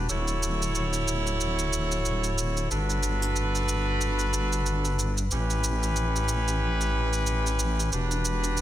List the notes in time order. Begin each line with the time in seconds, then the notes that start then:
0.09 D1 E4 F#4 A4 C#5, shaker
0.28 shaker
0.43 shaker
0.62 shaker
0.75 shaker
0.93 shaker
1.08 shaker
1.27 shaker
1.41 shaker
1.59 shaker
1.73 shaker
1.92 shaker
2.06 shaker
2.24 shaker
2.38 shaker
2.57 shaker
2.71 G1 D4 F#4 A4 B4, shaker
2.90 shaker
3.03 shaker
3.22 shaker
3.36 shaker
3.55 shaker
3.69 shaker
4.01 shaker
4.19 shaker
4.34 shaker
4.53 shaker
4.66 shaker
4.85 shaker
4.99 shaker
5.18 shaker
5.31 A1 C#4 E4 G4 B4, shaker
5.50 shaker
5.64 shaker
5.83 shaker
5.96 shaker
6.16 shaker
6.29 shaker
6.48 shaker
6.81 shaker
7.13 shaker
7.27 shaker
7.47 shaker
7.59 shaker
7.80 shaker
7.92 E1 D4 F#4 G4 B4, shaker
8.11 shaker
8.25 shaker
8.44 shaker
8.57 shaker